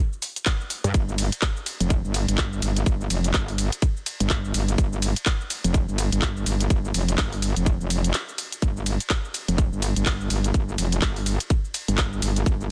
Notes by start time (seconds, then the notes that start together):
0.13 shaker
0.22 open hi-hat, shaker
0.36 closed hi-hat, shaker
0.46 kick, clap, closed hi-hat, shaker
0.61 shaker
0.70 open hi-hat, shaker
0.84 G2, closed hi-hat, shaker
0.94 G1, kick, closed hi-hat, ride, shaker
1.09 shaker
1.18 open hi-hat, ride, shaker
1.32 closed hi-hat, shaker
1.42 kick, clap, closed hi-hat, ride, shaker
1.57 shaker
1.66 open hi-hat, ride, shaker
1.80 F1, closed hi-hat, shaker
1.90 kick, closed hi-hat, ride, shaker
2.04 G1, shaker
2.14 open hi-hat, ride, shaker
2.28 G1, closed hi-hat, shaker
2.38 kick, clap, closed hi-hat, ride, shaker
2.53 shaker
2.62 G1, open hi-hat, ride, shaker
2.76 closed hi-hat, shaker
2.86 G1, kick, closed hi-hat, ride, shaker
3.01 shaker
3.10 F1, open hi-hat, ride, shaker
3.24 closed hi-hat, shaker
3.34 G1, kick, clap, closed hi-hat, ride, shaker
3.48 open hi-hat, shaker
3.58 open hi-hat, ride, shaker
3.72 closed hi-hat, shaker
3.82 kick, closed hi-hat, ride, shaker
3.97 shaker
4.06 open hi-hat, ride, shaker
4.20 G1, closed hi-hat, shaker
4.30 kick, clap, closed hi-hat, ride, shaker
4.45 shaker
4.54 G1, open hi-hat, ride, shaker
4.68 closed hi-hat, shaker
4.78 G1, kick, closed hi-hat, ride, shaker
4.93 shaker
5.02 open hi-hat, ride, shaker
5.16 closed hi-hat, shaker
5.26 kick, clap, closed hi-hat, ride, shaker
5.41 shaker
5.50 open hi-hat, ride, shaker
5.64 F1, closed hi-hat, shaker
5.74 kick, closed hi-hat, ride, shaker
5.88 G1, shaker
5.98 open hi-hat, ride, shaker
6.12 G1, closed hi-hat, shaker
6.22 kick, clap, closed hi-hat, ride, shaker
6.37 shaker
6.46 G1, open hi-hat, ride, shaker
6.60 closed hi-hat, shaker
6.70 G1, kick, closed hi-hat, ride, shaker
6.85 shaker
6.94 F1, open hi-hat, ride, shaker
7.08 closed hi-hat, shaker
7.18 G1, kick, clap, closed hi-hat, ride, shaker
7.32 open hi-hat, shaker
7.42 open hi-hat, ride, shaker
7.56 F1, closed hi-hat, shaker
7.66 kick, closed hi-hat, ride, shaker
7.80 F1, shaker
7.90 open hi-hat, ride, shaker
8.04 closed hi-hat, shaker
8.14 clap, closed hi-hat, ride, shaker
8.29 shaker
8.38 open hi-hat, ride, shaker
8.52 closed hi-hat, shaker
8.62 G1, kick, closed hi-hat, ride, shaker
8.77 shaker
8.86 open hi-hat, ride, shaker
9.00 closed hi-hat, shaker
9.10 kick, clap, closed hi-hat, ride, shaker
9.25 shaker
9.34 open hi-hat, ride, shaker
9.48 F1, closed hi-hat, shaker
9.58 kick, closed hi-hat, ride, shaker
9.72 G1, shaker
9.82 open hi-hat, ride, shaker
9.96 G1, closed hi-hat, shaker
10.06 kick, clap, closed hi-hat, ride, shaker
10.21 shaker
10.30 G1, open hi-hat, ride, shaker
10.44 closed hi-hat, shaker
10.54 G1, kick, closed hi-hat, ride, shaker
10.69 shaker
10.78 F1, open hi-hat, ride, shaker
10.92 closed hi-hat, shaker
11.02 G1, kick, clap, closed hi-hat, ride, shaker
11.16 open hi-hat, shaker
11.26 open hi-hat, ride, shaker
11.40 closed hi-hat, shaker
11.50 kick, closed hi-hat, ride, shaker
11.65 shaker
11.74 open hi-hat, ride, shaker
11.88 G1, closed hi-hat, shaker
11.98 kick, clap, closed hi-hat, ride, shaker
12.13 shaker
12.22 G1, open hi-hat, ride, shaker
12.36 closed hi-hat, shaker
12.46 G1, kick, closed hi-hat, ride, shaker
12.61 shaker